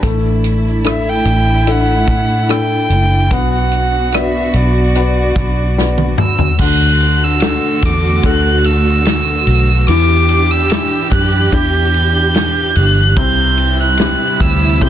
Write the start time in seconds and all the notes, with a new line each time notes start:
Already playing: D4
0.03 A1 A3 E4, kick, closed hi-hat
0.44 closed hi-hat
0.84 D4 E4 A4 E5, cross-stick, closed hi-hat
1.09 G5
1.25 A1, closed hi-hat
1.67 D4 E4 A4, closed hi-hat
1.71 F#5
2.08 A2, kick, closed hi-hat
2.48 D4 E4 A4 G5, cross-stick, closed hi-hat
2.90 F#1, closed hi-hat
3.31 B1 B3 F#4 F#5, kick, closed hi-hat
3.53 F#5
3.71 closed hi-hat
4.12 F#4 B4 D5 E5, cross-stick, closed hi-hat
4.54 B1 D5, closed hi-hat
4.95 F#4 B4 D5, closed hi-hat
5.36 B1, kick, closed hi-hat
5.78 F#4 B4 D5, snare
5.98 high tom
6.18 E6, mid tom
6.39 floor tom
6.58 D2 D3 A3 F#4 F#6, kick, crash, shaker
6.81 shaker
7.00 ride, shaker
7.22 E6, shaker
7.40 D4 F#4 A4, snare, ride, shaker
7.63 shaker
7.82 E2 D6, kick, snare, ride, shaker
8.04 shaker
8.23 D2 D4 F#4 A4 F#6, kick, ride, shaker
8.47 shaker
8.64 E6, ride, shaker
8.88 shaker
9.05 snare, ride, shaker
9.29 shaker
9.47 B1, ride
9.69 shaker
9.88 E2 E3 D4 G4 D6, ride, shaker
10.10 shaker
10.29 ride, shaker
10.50 E6, shaker
10.70 D4 E4 G4, snare, ride, shaker
10.91 shaker
11.11 F#2 F#6, kick, ride, shaker
11.33 shaker
11.52 E2 D4 E4 G4 G6, kick, ride, shaker
11.73 shaker
11.94 ride, shaker
12.14 shaker
12.34 snare, ride, shaker
12.56 shaker
12.75 G1 F#6, ride
12.97 shaker
13.16 C2 C3 G3 E4 G6, kick, ride, shaker
13.38 shaker
13.57 ride, shaker
13.78 F#6, shaker
13.97 C4 E4 G4, snare, ride, shaker
14.20 shaker
14.40 D2 E6, kick, ride, shaker
14.62 shaker
14.81 C2 C4 E4 G4 G6, kick, ride, shaker